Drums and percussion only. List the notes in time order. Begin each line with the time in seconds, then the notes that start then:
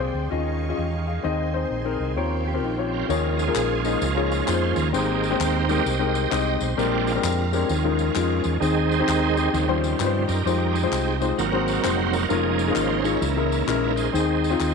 3.10 tambourine
3.39 tambourine
3.55 clap, tambourine
3.85 tambourine
4.02 tambourine
4.31 tambourine
4.48 clap, tambourine
4.76 tambourine
4.94 tambourine
5.23 tambourine
5.40 clap, tambourine
5.69 tambourine
5.86 tambourine
6.15 tambourine
6.32 clap, tambourine
6.60 tambourine
6.79 tambourine
7.07 tambourine
7.24 clap, tambourine
7.53 tambourine
7.69 tambourine
7.99 tambourine
8.15 clap, tambourine
8.44 tambourine
8.62 tambourine
8.92 tambourine
9.08 clap, tambourine
9.37 tambourine
9.54 tambourine
9.84 tambourine
10.00 clap, tambourine
10.29 tambourine
10.47 tambourine
10.75 tambourine
10.92 clap, tambourine
11.22 tambourine
11.39 tambourine
11.68 tambourine
11.84 clap, tambourine
12.13 tambourine
12.30 tambourine
12.59 tambourine
12.75 clap, tambourine
13.05 tambourine
13.22 tambourine
13.52 tambourine
13.68 clap, tambourine
13.97 tambourine
14.15 tambourine
14.44 tambourine
14.60 clap, tambourine